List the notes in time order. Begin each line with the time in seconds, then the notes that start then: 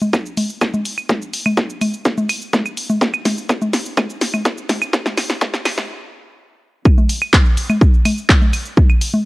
0.02 low conga, shaker
0.13 kick, snare, claves, shaker
0.26 shaker
0.37 open hi-hat, low conga, shaker
0.50 shaker
0.61 kick, snare, claves, shaker
0.74 low conga, shaker
0.85 open hi-hat, shaker
0.98 claves, shaker
1.09 kick, snare, low conga, shaker
1.22 shaker
1.33 open hi-hat, shaker
1.46 low conga, claves, shaker
1.57 kick, snare, shaker
1.70 shaker
1.81 open hi-hat, low conga, claves, shaker
1.94 shaker
2.05 kick, snare, shaker
2.18 low conga, shaker
2.29 open hi-hat, claves, shaker
2.42 shaker
2.53 kick, snare, low conga, shaker
2.66 claves, shaker
2.77 open hi-hat, shaker
2.90 low conga, shaker
3.01 kick, snare, shaker
3.14 claves, shaker
3.25 snare, open hi-hat, low conga, shaker
3.38 shaker
3.49 kick, snare, claves, shaker
3.62 low conga, shaker
3.73 snare, open hi-hat, shaker
3.86 shaker
3.97 kick, snare, low conga, claves, shaker
4.10 shaker
4.21 snare, open hi-hat, shaker
4.34 low conga, claves, shaker
4.45 kick, snare, shaker
4.58 shaker
4.69 snare, open hi-hat, low conga, shaker
4.82 claves, shaker
4.93 kick, snare, shaker
5.06 snare, low conga, shaker
5.18 snare, open hi-hat, claves, shaker
5.30 snare, shaker
5.41 kick, snare, low conga, shaker
5.54 snare, shaker
5.65 snare, open hi-hat, claves, shaker
5.78 snare, low conga, shaker
6.85 kick, claves, shaker
6.98 low conga, shaker
7.09 open hi-hat, shaker
7.22 claves, shaker
7.33 kick, clap, low conga, shaker
7.46 shaker
7.57 open hi-hat, shaker
7.70 low conga, claves, shaker
7.81 kick, shaker
7.94 shaker
8.05 open hi-hat, low conga, claves, shaker
8.18 shaker
8.29 kick, clap, shaker
8.42 low conga, shaker
8.53 open hi-hat, claves, shaker
8.66 shaker
8.77 kick, low conga, shaker
8.90 claves, shaker
9.01 open hi-hat, shaker
9.14 low conga, shaker